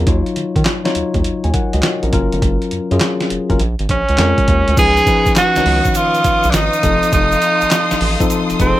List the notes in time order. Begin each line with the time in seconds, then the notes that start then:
0.06 D#2 F#3 D#4 F4 C#5, kick, closed hi-hat
0.26 closed hi-hat
0.36 D#3, closed hi-hat
0.56 D#3, kick, closed hi-hat
0.65 snare, clap, closed hi-hat
0.84 F#3 D#4 F4 C#5, snare, closed hi-hat
0.95 D#2, closed hi-hat
1.14 D#2, kick, closed hi-hat
1.24 D#2, closed hi-hat
1.44 D#2 G#5, closed hi-hat
1.54 A#4 F#5, kick, closed hi-hat
1.73 C#2 F#4 D#5, closed hi-hat
1.83 F4 C#5, snare, clap, closed hi-hat
2.03 A#1 C#4 A#4, closed hi-hat
2.12 F#1 F#3 C#4 F4 A#4, kick, closed hi-hat
2.32 G1, closed hi-hat
2.42 F#1, kick, closed hi-hat
2.62 closed hi-hat
2.71 F#2, closed hi-hat
2.91 F#2 F#3 C#4 F4 G#4, closed hi-hat
3.00 snare, clap, closed hi-hat
3.20 snare, closed hi-hat
3.30 F#1, closed hi-hat
3.49 F#1 F#3 C#4 F4 A#4, kick, closed hi-hat
3.60 A#1, closed hi-hat
3.79 G#1, closed hi-hat
3.89 A#1 C#4, kick, closed hi-hat
4.09 C#2, closed hi-hat
4.18 F2 G#3 C#4 F4 A#4, snare, clap, closed hi-hat
4.38 kick, closed hi-hat
4.48 D#2, kick, closed hi-hat
4.68 D2, closed hi-hat
4.77 C#2 F3 C#4 D#4 G#4 B4 F5 C#6 D#6, kick, closed hi-hat, crash, shaker
4.97 closed hi-hat, shaker
5.06 F3 C#4 D#4 B4, kick, closed hi-hat, shaker
5.26 C#2, kick, closed hi-hat, shaker
5.36 F#4, snare, clap, closed hi-hat, shaker
5.55 C#2 D#3 C#4 D#4 C#5, snare, closed hi-hat, shaker
5.66 C#2, open hi-hat
5.85 kick, closed hi-hat, shaker
5.95 F4, closed hi-hat, shaker
6.14 closed hi-hat, shaker
6.24 B1, kick, closed hi-hat, shaker
6.43 B1, closed hi-hat, shaker
6.50 G#1 D4, snare, clap, closed hi-hat, shaker
6.55 D#4
6.73 closed hi-hat, shaker
6.83 F1 F3 C4 D#4 A4 C6, kick, closed hi-hat, shaker
7.03 closed hi-hat, shaker
7.12 F1 D#4, kick, closed hi-hat, shaker
7.32 closed hi-hat, shaker
7.42 closed hi-hat, shaker
7.61 A1, closed hi-hat, shaker
7.71 snare, clap, closed hi-hat, shaker
7.91 A1, snare, closed hi-hat, shaker
8.01 A1, open hi-hat
8.20 F3 C4 D#4 A4, kick, closed hi-hat, shaker
8.30 closed hi-hat, shaker
8.50 F1, closed hi-hat, shaker
8.59 F1 F3 C4 D#4 G#4, kick, closed hi-hat, shaker
8.67 A4